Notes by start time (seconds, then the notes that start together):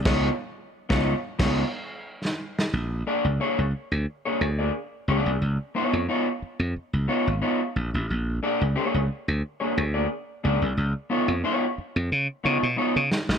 0.05 C#2 B3 D#4 F4 C#5, kick, snare, crash
0.89 C#2 B3 D#4 F4 C#5, kick, snare
1.39 C#2 B3 D#4 F4 C#5, kick, snare, crash
2.25 snare
2.59 snare
2.73 A#1
3.07 A#3 D4 G#4 D5
3.25 C#2
3.40 A#3 D4 G#4 C#5
3.58 C#2
3.92 D2
4.25 A#3 D4 G#4 C#5
4.41 D2
4.59 A#3 D4 G#4 D5
5.08 C#2 A#3 D4 G#4 D5
5.26 C2
5.42 C#2
5.75 B3 D#4 F4 C#5
5.93 F2
6.09 B3 D#4 F4 C#5
6.42 muted slap bass stroke
6.59 F2
6.76 muted slap bass stroke
6.93 C#2
7.08 B3 D#4 F4 C#5
7.27 G#1
7.42 B3 D#4 F4 C#5
7.76 A#1
7.94 A1
8.10 A#1
8.43 A#3 D4 G#4 D5
8.61 C#2
8.76 A#3 D4 G#4 C#5
8.94 C#2
9.28 D2
9.60 A#3 D4 G#4 C#5
9.78 D2
9.94 A#3 D4 G#4 D5
10.44 C#2 A#3 D4 G#4 D5
10.62 C2
10.77 C#2
11.10 B3 D#4 F4 C#5
11.28 F2
11.44 B3 D#4 F4 C#5
11.78 muted slap bass stroke
11.96 F2
12.12 C#3
12.44 C#3 B3 D#4 F4 C#5
12.63 B2
12.77 B3 D#4 F4 C#5
12.96 C#3
13.12 snare
13.29 A1, snare